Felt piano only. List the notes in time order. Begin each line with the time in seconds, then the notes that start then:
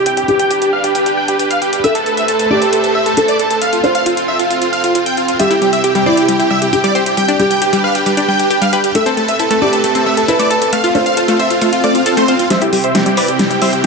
Already playing: G4
0.28 G4
1.84 A4
2.50 G4
3.17 A4
3.84 C5
5.39 G4
6.06 E4
6.73 G4
7.39 G4
8.95 A4
9.62 G4
10.28 B4
10.95 C5